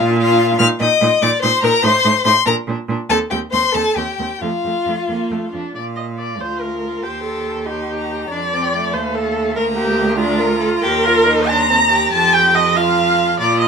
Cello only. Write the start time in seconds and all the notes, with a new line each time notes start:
Already playing: A#2
0.59 A#2
0.80 A#2
1.01 A#2
1.22 A#2
1.43 A#2
1.63 A#2
1.83 A2
2.04 A2
2.25 A2
2.46 A#2
2.67 A#2
2.88 A#2
3.10 D#2
3.32 D#2
3.53 D#2
3.75 D#2
3.97 D#2
4.19 D#2
4.41 F2
4.64 F2
4.87 F2
5.09 F2
5.31 F2
5.54 F2
5.76 A#2
6.41 D2
7.05 D#2
8.31 F2
8.94 D#2
9.56 D2
10.83 D#2
12.13 F2
13.40 A#2